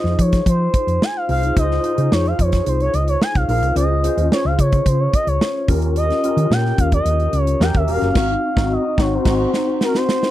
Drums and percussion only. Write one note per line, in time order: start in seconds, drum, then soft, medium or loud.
0.06 snare soft
0.19 kick medium
0.19 closed hi-hat medium
0.32 kick medium
0.32 snare soft
0.32 closed hi-hat soft
0.46 kick medium
0.46 closed hi-hat medium
0.74 kick medium
0.74 closed hi-hat medium
0.88 closed hi-hat medium
1.02 snare loud
1.29 open hi-hat medium
1.43 closed hi-hat soft
1.57 kick loud
1.57 closed hi-hat medium
1.71 snare soft
1.84 closed hi-hat medium
1.98 closed hi-hat soft
2.12 snare loud
2.25 closed hi-hat soft
2.39 kick medium
2.39 closed hi-hat medium
2.52 kick medium
2.52 snare soft
2.52 closed hi-hat soft
2.66 closed hi-hat medium
2.80 closed hi-hat soft
2.94 closed hi-hat medium
3.08 closed hi-hat medium
3.22 snare medium
3.35 kick medium
3.35 closed hi-hat soft
3.49 open hi-hat medium
3.63 closed hi-hat soft
3.76 closed hi-hat medium
4.04 closed hi-hat medium
4.18 closed hi-hat soft
4.32 snare loud
4.59 kick medium
4.59 closed hi-hat medium
4.72 kick medium
4.72 closed hi-hat soft
4.86 kick medium
4.86 closed hi-hat medium
5.13 kick medium
5.13 closed hi-hat medium
5.27 closed hi-hat medium
5.41 snare loud
5.68 kick medium
5.68 open hi-hat medium
5.82 closed hi-hat medium
5.96 closed hi-hat medium
6.10 snare soft
6.10 closed hi-hat soft
6.24 closed hi-hat medium
6.38 closed hi-hat soft
6.52 snare loud
6.65 snare soft
6.78 kick medium
6.78 closed hi-hat medium
6.92 kick medium
6.92 closed hi-hat soft
7.06 closed hi-hat medium
7.20 closed hi-hat soft
7.33 closed hi-hat medium
7.47 closed hi-hat soft
7.61 snare medium
7.74 kick medium
7.74 closed hi-hat soft
7.88 open hi-hat medium
8.02 snare soft
8.02 closed hi-hat soft
8.15 kick loud
8.15 snare loud
8.15 crash medium
8.57 kick loud
8.57 snare loud
8.98 kick loud
8.98 snare medium
9.25 kick loud
9.25 snare medium
9.25 crash medium
9.54 snare medium
9.81 snare medium
9.95 snare medium
10.09 snare loud
10.23 snare medium